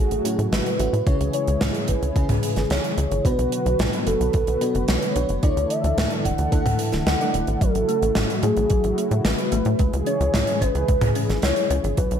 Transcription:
Already playing: fm electric piano A2 A3 C#4 E4 F#4, analog synth pad C#3 F#3 A3 E4 F#4, soft synth lead G#4
0.11 analog synth bass A1, closed hi-hat
0.25 fm electric piano A2 A3 C#4 E4 F#4, closed hi-hat
0.39 analog synth bass A2, closed hi-hat
0.52 analog synth bass A1, soft synth lead B4, snare, closed hi-hat
0.66 closed hi-hat
0.79 analog synth bass A1, fm electric piano A3 C#4 E4 F#4, closed hi-hat
0.93 analog synth bass A2, closed hi-hat
1.07 analog synth bass C#2, fm electric piano C#3 G#3 C#4 E4 C#5, analog synth pad E3 G#3 G#4, kick, closed hi-hat
1.20 analog synth bass C#2, closed hi-hat
1.33 soft synth lead C#5, closed hi-hat
1.48 analog synth bass C#2, closed hi-hat
1.61 analog synth bass C#2, snare, closed hi-hat, mid tom
1.74 closed hi-hat
1.88 analog synth bass G#1, soft synth lead B4, kick, closed hi-hat
2.02 analog synth bass C#2, closed hi-hat
2.16 analog synth bass C#2, fm electric piano C#3 G#3 C#4 E4 G#4, kick, closed hi-hat
2.29 analog synth bass C#2, closed hi-hat, mid tom
2.43 closed hi-hat
2.56 analog synth bass G#1, snare, closed hi-hat
2.70 analog synth bass C#2, soft synth lead C#5, snare, closed hi-hat
2.84 closed hi-hat
2.98 analog synth bass C#2, closed hi-hat
3.11 analog synth bass G#1, closed hi-hat
3.25 analog synth bass B1, fm electric piano B2 B3 D4 F#4 B4, analog synth pad D3 F#3 B3 F#4 B4, soft synth lead B4, kick, closed hi-hat
3.38 analog synth bass B1, closed hi-hat
3.52 closed hi-hat
3.66 analog synth bass B1, closed hi-hat
3.79 analog synth bass B1, snare, closed hi-hat, mid tom
3.93 closed hi-hat
4.07 analog synth bass F#1, soft synth lead A4, closed hi-hat
4.20 analog synth bass B1, closed hi-hat
4.33 analog synth bass B1, kick, closed hi-hat
4.47 analog synth bass B1, closed hi-hat
4.61 fm electric piano B2 B3 D4 F#4 B4, closed hi-hat
4.75 analog synth bass F#1, closed hi-hat
4.88 analog synth bass B1, soft synth lead C#5, snare, closed hi-hat
5.02 closed hi-hat
5.16 analog synth bass B1, fm electric piano B3 D4 F#4 B4, closed hi-hat
5.29 analog synth bass F#1, closed hi-hat
5.43 analog synth bass D2, fm electric piano D3 A3 D4 E4 D5, analog synth pad E3 A3 E4 A4, kick, closed hi-hat
5.57 analog synth bass D2, closed hi-hat
5.70 soft synth lead E5, closed hi-hat
5.84 analog synth bass D2, closed hi-hat
5.97 analog synth bass D2, snare, closed hi-hat, mid tom
6.10 closed hi-hat
6.25 analog synth bass D1, soft synth lead F#5, kick, closed hi-hat
6.38 analog synth bass D2, closed hi-hat
6.52 analog synth bass D2, fm electric piano D3 A3 D4 E4 A4, kick, closed hi-hat
6.66 analog synth bass D2, closed hi-hat, mid tom
6.79 closed hi-hat
6.92 analog synth bass D1, fm electric piano D3 A3 D4 E4 A4, snare, closed hi-hat
7.07 analog synth bass D2, soft synth lead F#5, snare, closed hi-hat
7.20 fm electric piano D3 A3 D4 E4 D5, closed hi-hat
7.34 analog synth bass D1, closed hi-hat
7.47 analog synth bass A1, closed hi-hat
7.61 analog synth bass A1, analog synth pad C#3 F#3 A3 F#4, synth arpeggio sound F#3, soft synth lead A4, kick, closed hi-hat
7.75 analog synth bass A1, closed hi-hat
7.88 synth arpeggio sound A3, closed hi-hat
8.02 analog synth bass A1, closed hi-hat
8.15 analog synth bass A1, synth arpeggio sound C#4, snare, closed hi-hat, mid tom
8.30 closed hi-hat
8.43 analog synth bass A2, synth arpeggio sound A3, soft synth lead G#4, closed hi-hat
8.57 analog synth bass A1, closed hi-hat
8.70 analog synth bass A1, synth arpeggio sound F#3, kick, closed hi-hat
8.84 analog synth bass A1, closed hi-hat
8.98 synth arpeggio sound A3, closed hi-hat
9.11 analog synth bass A2, closed hi-hat
9.25 analog synth bass A1, synth arpeggio sound A3, soft synth lead B4, snare, closed hi-hat
9.39 closed hi-hat
9.52 analog synth bass A1, synth arpeggio sound A3, closed hi-hat
9.65 analog synth bass A2, closed hi-hat
9.79 analog synth bass C#2, analog synth pad E3 G#3 G#4, synth arpeggio sound G#3, kick, closed hi-hat
9.93 analog synth bass C#2, closed hi-hat
10.06 synth arpeggio sound C#4, soft synth lead C#5, closed hi-hat
10.20 analog synth bass C#2, closed hi-hat
10.34 analog synth bass C#2, synth arpeggio sound E4, snare, closed hi-hat, mid tom
10.47 closed hi-hat
10.61 analog synth bass G#1, synth arpeggio sound C#4, soft synth lead B4, kick, closed hi-hat
10.75 analog synth bass C#2, closed hi-hat
10.88 analog synth bass C#2, synth arpeggio sound G#3, kick, closed hi-hat
11.01 analog synth bass C#2, closed hi-hat, mid tom
11.15 synth arpeggio sound C#4, closed hi-hat
11.29 analog synth bass G#1, snare, closed hi-hat
11.42 analog synth bass C#2, synth arpeggio sound E4, soft synth lead C#5, snare, closed hi-hat
11.56 closed hi-hat
11.70 analog synth bass C#2, synth arpeggio sound C#4, closed hi-hat
11.84 analog synth bass G#1, closed hi-hat
11.97 analog synth bass B1, analog synth pad B2 D3 F#3 D4 F#4, synth arpeggio sound F#3, soft synth lead B4, kick, closed hi-hat
12.11 analog synth bass B1, closed hi-hat

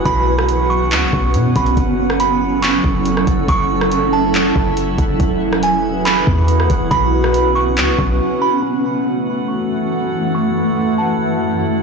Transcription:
Already playing: ambient pad F#4, synth texture F#5
0.05 808-style bass B1, ambient pad B3 C#4, synth texture C#4 B4, synth bell B5, kick, closed hi-hat
0.38 cross-stick
0.49 closed hi-hat
0.70 synth bell C#6
0.91 808-style bass D2, clap, closed hi-hat
1.02 808-style bass B1
1.13 808-style bass B1, kick
1.34 808-style bass B2, closed hi-hat
1.56 808-style bass B1, synth bell B5, kick, closed hi-hat
1.66 closed hi-hat
1.77 808-style bass F#1, ambient pad F#3 E4 A4, synth texture E4 A4, kick, closed hi-hat
2.10 cross-stick
2.20 synth bell B5, closed hi-hat
2.62 synth bell C#6, clap, closed hi-hat
2.84 808-style bass F#1, kick
3.05 closed hi-hat
3.17 cross-stick
3.27 808-style bass F#1, kick, closed hi-hat
3.48 808-style bass F#1, synth bell C#6, kick, closed hi-hat
3.81 cross-stick
3.92 closed hi-hat
4.13 synth bell A5
4.34 clap, closed hi-hat
4.56 808-style bass F#1, kick
4.77 closed hi-hat
4.98 808-style bass F#1, kick, closed hi-hat
5.20 808-style bass E1, ambient pad E3 F#4 B4, synth texture G#4 F#5, kick, closed hi-hat
5.53 cross-stick
5.63 synth bell G#5, closed hi-hat
6.05 synth bell B5, clap, closed hi-hat
6.27 808-style bass E2, kick
6.48 closed hi-hat
6.60 cross-stick
6.70 808-style bass E1, kick, closed hi-hat
6.91 808-style bass B1, ambient pad B3 C#4, synth texture C#4 B4, synth bell B5, kick, closed hi-hat
7.24 cross-stick
7.34 closed hi-hat
7.55 synth bell C#6
7.77 808-style bass D2, clap, closed hi-hat
7.88 808-style bass B1
7.99 808-style bass B1, kick
8.42 synth bell B5
8.62 ambient pad F#2 E3 A3 F#4 F#5, synth texture E4 A4 F#5
9.06 synth bell B5
9.48 synth bell C#6
10.35 synth bell C#6
10.98 synth bell A5

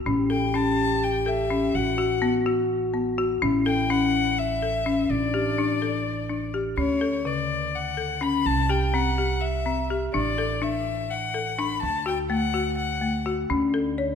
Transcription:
0.06 upright bass A1, marimba C#4, french horn G4
0.30 marimba A4, violin G5
0.54 marimba C#4, violin A5
1.04 violin G5
1.26 marimba A4, violin E5
1.50 marimba C#4
1.75 upright bass A1, french horn F#4, violin F#5
1.98 marimba F#4
2.22 marimba B3
2.46 marimba F#4
2.94 marimba B3
3.18 marimba F#4
3.42 upright bass A1, marimba C#4, french horn E4
3.66 marimba A4, violin G5
3.90 marimba C#4, violin F#5
4.38 violin E5
4.62 marimba A4
4.86 marimba C#4
5.10 upright bass A1, french horn D4, violin D5
5.34 marimba G4
5.58 marimba D4
5.82 marimba A4
6.30 marimba D4
6.54 marimba G4
6.77 upright bass D2, marimba C#4, violin C#5
7.01 marimba A4
7.25 marimba C#3, violin D5
7.75 violin F#5
7.97 marimba A4
8.21 marimba C#4, violin B5
8.46 upright bass C2, violin A5
8.70 marimba G4, violin G5
8.94 marimba C4, violin F#5
9.18 marimba G4
9.41 violin E5
9.66 marimba C4
9.90 marimba G4
10.14 upright bass A1, marimba D4, violin D5
10.38 marimba A4
10.62 marimba D4, violin E5
11.10 violin F#5
11.34 marimba A4
11.59 marimba D4, violin B5
11.83 upright bass D2, violin A5
12.06 marimba F#4, violin G5
12.30 marimba A3, violin F#5
12.54 marimba F#4
12.78 violin F#5
13.02 marimba A3
13.26 marimba F#4
13.50 upright bass D2, marimba C#4, french horn D4
13.74 marimba A4
13.98 marimba C#5

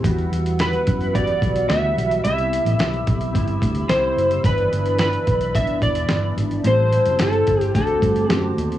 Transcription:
0.03 fingered electric bass E2, clean electric guitar E3 G3 B3 F#4, flute section B4 E5 F#5 E6, kick, closed hi-hat
0.18 closed hi-hat
0.32 fingered electric bass E2, closed hi-hat
0.46 closed hi-hat
0.59 electric slide guitar B4, snare, closed hi-hat
0.73 closed hi-hat
0.87 fingered electric bass F#2, kick, closed hi-hat
1.00 closed hi-hat
1.13 clean electric guitar E3 G3 B3 F#4, electric slide guitar D5, kick, closed hi-hat
1.27 closed hi-hat
1.42 fingered electric bass B1, kick, closed hi-hat
1.56 closed hi-hat
1.69 fingered electric bass D2, clean electric guitar E3 G3 B3 F#4, electric slide guitar E5, snare, closed hi-hat
1.97 fingered electric bass B1, closed hi-hat
2.11 closed hi-hat
2.23 fingered electric bass C2, clean electric guitar C3 G3 B3 E4, flute section G4 B5, electric slide guitar E5, closed hi-hat
2.38 closed hi-hat
2.53 closed hi-hat
2.65 fingered electric bass A1, closed hi-hat
2.78 fingered electric bass B1, snare, closed hi-hat
2.94 closed hi-hat
3.07 fingered electric bass B1, kick, closed hi-hat
3.21 closed hi-hat
3.33 fingered electric bass G1, clean electric guitar C3 G3 B3 E4, kick, closed hi-hat
3.48 closed hi-hat
3.62 fingered electric bass D2, kick, closed hi-hat
3.75 closed hi-hat
3.89 fingered electric bass C2, clean electric guitar C3 G3 E4, electric slide guitar C5, snare, closed hi-hat
4.17 fingered electric bass F#1, closed hi-hat
4.31 closed hi-hat
4.44 fingered electric bass G1, clean electric guitar G2 E3 B3 D4, electric slide guitar B4, flute section D5, kick, closed hi-hat
4.58 closed hi-hat
4.72 fingered electric bass G1, clean electric guitar E3 B3 D4, closed hi-hat
4.86 closed hi-hat
4.99 electric slide guitar B4, snare, closed hi-hat
5.13 closed hi-hat
5.27 fingered electric bass B1, kick, closed hi-hat
5.41 closed hi-hat
5.55 clean electric guitar G2 E3 B3 D4, electric slide guitar E5, kick, closed hi-hat
5.67 closed hi-hat
5.82 fingered electric bass E1, electric slide guitar D5, kick, closed hi-hat
5.95 closed hi-hat
6.09 fingered electric bass G1, clean electric guitar G2 E3 B3 D4, snare, closed hi-hat
6.37 fingered electric bass G#1, closed hi-hat
6.51 closed hi-hat
6.63 fingered electric bass A1, clean electric guitar A2 G3 C4 E4, flute section C5 A5 E6, closed hi-hat
6.67 electric slide guitar C5
6.91 clean electric guitar G3 C4 E4, closed hi-hat
7.06 fingered electric bass F#1, closed hi-hat
7.19 fingered electric bass G1, electric slide guitar A4, snare, closed hi-hat
7.33 closed hi-hat
7.47 fingered electric bass G1, kick, closed hi-hat
7.61 closed hi-hat
7.74 fingered electric bass D2, clean electric guitar D3 A3 C4 F#4, electric slide guitar A4, flute section F#5 A5 D6, kick, snare, closed hi-hat
7.87 closed hi-hat
8.02 fingered electric bass G2, kick, closed hi-hat
8.16 closed hi-hat
8.29 fingered electric bass F#2, clean electric guitar D3 A3 C4 F#4, electric slide guitar G4, snare, closed hi-hat
8.57 fingered electric bass D#2, closed hi-hat
8.72 closed hi-hat

